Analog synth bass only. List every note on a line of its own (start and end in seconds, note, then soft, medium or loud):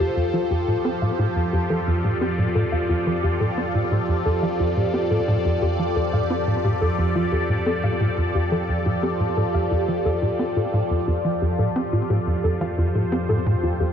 0.17 0.31 F2 medium
0.34 0.43 F3 medium
0.51 0.65 F2 medium
0.68 0.77 A2 medium
0.85 0.91 C4 medium
1.02 1.11 A2 medium
1.19 1.28 A2 loud
1.36 1.45 F2 medium
1.53 1.67 F2 medium
1.70 1.80 F3 medium
1.87 2.01 F2 medium
2.04 2.14 A2 medium
2.21 2.27 C4 medium
2.38 2.48 A2 medium
2.56 2.65 A2 loud
2.73 2.82 F2 medium
2.90 3.04 F2 medium
3.07 3.16 F3 medium
3.24 3.38 F2 medium
3.41 3.50 A2 medium
3.58 3.63 C4 medium
3.75 3.84 A2 medium
3.92 4.01 A2 loud
4.09 4.18 F2 medium
4.26 4.40 F2 medium
4.43 4.52 F3 medium
4.60 4.74 F2 medium
4.77 4.86 A2 medium
4.94 5.00 C4 medium
5.11 5.20 A2 medium
5.28 5.37 A2 loud
5.45 5.54 F2 medium
5.62 5.76 F2 medium
5.79 5.89 F3 medium
5.96 6.10 F2 medium
6.13 6.23 A2 medium
6.30 6.36 C4 medium
6.47 6.57 A2 medium
6.64 6.74 A2 loud
6.81 6.91 F2 medium
6.98 7.13 F2 medium
7.15 7.25 F3 medium
7.32 7.47 F2 medium
7.49 7.59 A2 medium
7.66 7.72 C4 medium
7.84 7.93 A2 medium
8.01 8.10 A2 loud
8.18 8.27 F2 medium
8.35 8.49 F2 medium
8.52 8.61 F3 medium
8.69 8.83 F2 medium
8.86 8.95 A2 medium
9.03 9.09 C4 medium
9.20 9.29 A2 medium
9.37 9.47 A2 loud
9.54 9.64 F2 medium
9.71 9.85 F2 medium
9.88 9.98 F3 medium
10.05 10.19 F2 medium
10.22 10.32 A2 medium
10.39 10.45 C4 medium
10.56 10.66 A2 medium
10.73 10.83 A2 loud
10.90 11.00 F2 medium
11.08 11.22 F2 medium
11.25 11.34 F3 medium
11.42 11.56 F2 medium
11.59 11.68 A2 medium
11.76 11.81 C4 medium
11.93 12.02 A2 medium
12.10 12.19 A2 loud
12.27 12.36 F2 medium
12.44 12.58 F2 medium
12.61 12.70 F3 medium
12.78 12.92 F2 medium
12.95 13.05 A2 medium
13.12 13.18 C4 medium
13.29 13.39 A2 medium
13.46 13.56 A2 loud
13.63 13.73 F2 medium
13.80 13.93 F2 medium